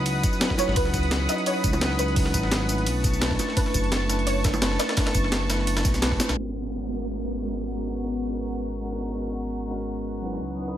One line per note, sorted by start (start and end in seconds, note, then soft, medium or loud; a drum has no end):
0.00 0.22 C#2 loud
0.00 0.39 F#3 medium
0.00 0.40 C#4 medium
0.00 0.41 D#4 medium
0.00 0.42 E4 medium
0.00 0.43 B4 medium
0.00 0.37 D#5 loud
0.00 2.83 F#5 medium
0.00 2.83 B5 medium
0.00 2.83 D#6 medium
0.06 closed hi-hat medium
0.06 ride medium
0.23 kick loud
0.23 closed hi-hat medium
0.23 tambourine medium
0.33 tambourine soft
0.39 0.71 F#3 medium
0.39 0.73 C#4 medium
0.39 0.74 D#4 medium
0.39 0.75 E4 medium
0.39 0.75 B4 loud
0.39 snare loud
0.39 closed hi-hat medium
0.39 ride medium
0.50 kick medium
0.50 snare medium
0.58 0.77 C#5 loud
0.58 snare soft
0.58 closed hi-hat medium
0.58 tambourine medium
0.58 high bongo medium
0.68 0.75 G#1 loud
0.68 snare soft
0.73 1.27 C#2 loud
0.73 1.24 F#3 medium
0.73 1.26 C#4 medium
0.73 1.27 D#4 medium
0.73 1.30 B4 loud
0.73 kick loud
0.73 closed hi-hat loud
0.73 closed hi-hat medium
0.73 ride medium
0.78 1.28 E4 medium
0.78 1.29 B4 medium
0.85 snare soft
0.94 kick medium
0.94 closed hi-hat medium
0.94 tambourine medium
1.03 closed hi-hat soft
1.11 snare loud
1.11 closed hi-hat medium
1.11 ride medium
1.25 1.78 F#3 medium
1.25 1.79 C#4 medium
1.25 1.79 D#4 medium
1.25 1.37 D#5 loud
1.25 cross-stick soft
1.25 snare medium
1.25 closed hi-hat medium
1.25 tambourine medium
1.31 1.80 E4 medium
1.31 1.81 B4 medium
1.38 closed hi-hat soft
1.46 2.01 C#5 loud
1.46 closed hi-hat medium
1.46 ride medium
1.64 1.98 C#2 medium
1.64 kick loud
1.64 closed hi-hat medium
1.64 tambourine medium
1.73 tambourine soft
1.73 high bongo medium
1.80 2.12 F#3 medium
1.80 2.14 C#4 medium
1.80 2.15 D#4 medium
1.80 2.15 E4 medium
1.80 2.15 B4 medium
1.80 snare loud
1.80 closed hi-hat medium
1.80 ride medium
1.91 snare soft
1.99 2.33 C#2 medium
1.99 3.00 B4 medium
1.99 closed hi-hat medium
1.99 tambourine medium
2.08 closed hi-hat soft
2.13 2.65 F#3 medium
2.13 2.66 C#4 medium
2.13 2.67 D#4 medium
2.13 kick loud
2.13 closed hi-hat loud
2.13 open hi-hat medium
2.13 ride medium
2.18 2.68 E4 medium
2.18 2.69 B4 medium
2.26 cross-stick medium
2.26 snare soft
2.34 2.88 G#1 loud
2.34 kick medium
2.34 closed hi-hat medium
2.34 tambourine medium
2.43 snare soft
2.51 snare loud
2.51 closed hi-hat medium
2.51 closed hi-hat loud
2.51 ride medium
2.66 3.18 A3 medium
2.66 3.19 C#4 medium
2.66 3.20 D4 medium
2.66 closed hi-hat medium
2.66 tambourine medium
2.71 3.21 E4 medium
2.71 3.21 B4 loud
2.78 closed hi-hat soft
2.86 3.38 B1 loud
2.86 6.34 A5 medium
2.86 6.34 C#6 medium
2.86 closed hi-hat medium
2.86 ride medium
3.04 kick loud
3.04 closed hi-hat medium
3.04 tambourine medium
3.13 tambourine soft
3.20 3.52 A3 medium
3.20 3.54 C#4 medium
3.20 3.55 D4 medium
3.20 3.55 E4 medium
3.20 3.56 B4 medium
3.20 snare loud
3.20 closed hi-hat medium
3.20 ride medium
3.31 kick medium
3.31 snare medium
3.39 snare soft
3.39 closed hi-hat medium
3.39 tambourine medium
3.39 high bongo medium
3.48 snare soft
3.53 4.05 A3 medium
3.53 4.06 C#4 medium
3.53 4.07 D4 medium
3.53 4.29 B4 medium
3.53 kick loud
3.53 closed hi-hat medium
3.53 closed hi-hat loud
3.53 ride medium
3.58 4.08 E4 medium
3.58 4.09 B4 medium
3.66 snare soft
3.74 4.78 F#1 loud
3.74 kick medium
3.74 closed hi-hat medium
3.74 tambourine medium
3.84 closed hi-hat soft
3.92 snare loud
3.92 closed hi-hat loud
3.92 closed hi-hat medium
3.92 ride medium
4.06 4.58 A3 medium
4.06 4.59 C#4 medium
4.06 4.60 D4 medium
4.06 cross-stick soft
4.06 snare medium
4.06 closed hi-hat medium
4.06 tambourine medium
4.11 4.61 E4 medium
4.11 4.62 B4 loud
4.19 closed hi-hat soft
4.26 4.81 C#5 loud
4.26 closed hi-hat loud
4.26 closed hi-hat medium
4.26 ride medium
4.44 kick loud
4.44 snare loud
4.44 closed hi-hat medium
4.44 tambourine medium
4.54 tambourine soft
4.54 high bongo medium
4.60 4.92 A3 medium
4.60 4.95 C#4 medium
4.60 4.95 D4 medium
4.60 4.96 E4 medium
4.60 4.96 B4 medium
4.60 snare loud
4.60 closed hi-hat loud
4.60 closed hi-hat medium
4.60 ride medium
4.71 snare soft
4.79 5.98 D5 loud
4.79 snare loud
4.79 closed hi-hat medium
4.79 tambourine medium
4.89 snare loud
4.89 closed hi-hat medium
4.93 5.45 A3 medium
4.93 5.47 B3 medium
4.93 5.48 D4 medium
4.93 kick loud
4.93 snare loud
4.93 closed hi-hat loud
4.93 closed hi-hat medium
4.93 ride medium
4.99 5.49 E4 medium
4.99 5.49 B4 medium
5.06 cross-stick medium
5.06 snare loud
5.06 closed hi-hat medium
5.14 5.84 F#1 loud
5.14 kick medium
5.14 closed hi-hat medium
5.14 tambourine medium
5.24 snare soft
5.32 snare loud
5.32 closed hi-hat loud
5.32 closed hi-hat medium
5.32 ride medium
5.46 5.99 A3 medium
5.46 6.00 B3 medium
5.46 6.00 D4 medium
5.46 cross-stick soft
5.46 snare loud
5.46 closed hi-hat medium
5.46 tambourine medium
5.52 6.01 E4 medium
5.52 6.02 B4 medium
5.59 snare soft
5.67 closed hi-hat loud
5.67 closed hi-hat medium
5.67 ride medium
5.77 snare loud
5.77 closed hi-hat medium
5.77 tambourine soft
5.77 high bongo soft
5.85 6.19 B1 medium
5.85 kick loud
5.85 snare soft
5.85 closed hi-hat medium
5.85 tambourine medium
5.94 snare soft
5.94 closed hi-hat medium
5.94 tambourine soft
6.01 6.35 A3 medium
6.01 6.35 C#4 medium
6.01 6.35 D4 medium
6.01 6.36 E4 medium
6.01 6.36 B4 loud
6.01 snare loud
6.01 closed hi-hat loud
6.01 closed hi-hat medium
6.01 ride medium
6.12 kick medium
6.12 snare soft
6.20 snare medium
6.20 closed hi-hat medium
6.20 tambourine medium
6.20 high bongo medium
6.29 6.37 B1 medium
6.29 snare loud
6.29 closed hi-hat medium
6.29 tambourine soft
6.34 10.39 G#1 medium
6.34 6.86 G#3 medium
6.34 6.87 B3 medium
6.34 10.37 B3 medium
6.34 6.88 C#4 medium
6.34 10.37 F#5 medium
6.34 10.37 A#5 medium
6.34 10.37 C#6 medium
6.34 downlifter medium
6.39 6.89 F#4 medium
6.39 6.90 A#4 medium
6.47 snare soft
6.72 closed hi-hat medium
6.87 7.39 G#3 medium
6.87 7.40 B3 medium
6.87 7.41 C#4 medium
6.87 snare soft
6.92 7.42 F#4 medium
6.92 7.43 A#4 medium
7.08 closed hi-hat medium
7.25 closed hi-hat medium
7.41 7.73 G#3 medium
7.41 7.75 B3 medium
7.41 7.76 C#4 medium
7.41 7.76 F#4 medium
7.41 7.77 A#4 medium
7.41 closed hi-hat medium
7.52 snare soft
7.70 closed hi-hat soft
7.75 8.26 G#3 medium
7.75 8.27 B3 medium
7.75 8.29 C#4 medium
7.80 8.30 F#4 medium
7.80 8.30 A#4 medium
7.87 snare soft
7.95 closed hi-hat medium
8.04 snare soft
8.13 closed hi-hat medium
8.27 8.79 G#3 medium
8.27 8.80 B3 medium
8.27 8.81 C#4 medium
8.27 snare soft
8.27 closed hi-hat medium
8.32 8.82 F#4 medium
8.32 8.83 A#4 medium
8.40 closed hi-hat soft
8.48 closed hi-hat medium
8.65 closed hi-hat medium
8.81 9.14 G#3 medium
8.81 9.16 B3 medium
8.81 9.16 C#4 medium
8.81 9.17 F#4 medium
8.81 9.17 A#4 medium
8.81 closed hi-hat medium
8.92 snare soft
9.01 snare soft
9.01 closed hi-hat medium
9.10 snare soft
9.15 9.66 G#3 medium
9.15 9.68 B3 medium
9.15 9.69 C#4 medium
9.15 closed hi-hat medium
9.20 9.70 F#4 medium
9.20 9.71 A#4 medium
9.28 snare soft
9.36 closed hi-hat medium
9.45 closed hi-hat soft
9.53 closed hi-hat medium
9.67 10.20 G#3 medium
9.67 10.21 B3 medium
9.67 10.21 C#4 medium
9.67 snare soft
9.73 10.22 F#4 medium
9.73 10.23 A#4 medium
9.88 closed hi-hat medium
10.06 closed hi-hat medium
10.22 10.54 F#3 medium
10.22 10.56 C#4 medium
10.22 10.57 D#4 medium
10.22 10.57 E4 medium
10.22 10.57 B4 medium
10.22 closed hi-hat medium
10.33 snare soft
10.41 10.77 C#2 medium
10.41 10.77 F#5 medium
10.41 10.77 B5 medium
10.41 10.77 D#6 medium
10.41 closed hi-hat medium
10.50 closed hi-hat soft
10.55 10.77 F#3 medium
10.55 10.77 C#4 medium
10.55 10.77 D#4 medium
10.55 open hi-hat medium
10.60 10.77 E4 medium
10.60 10.77 B4 medium
10.68 snare soft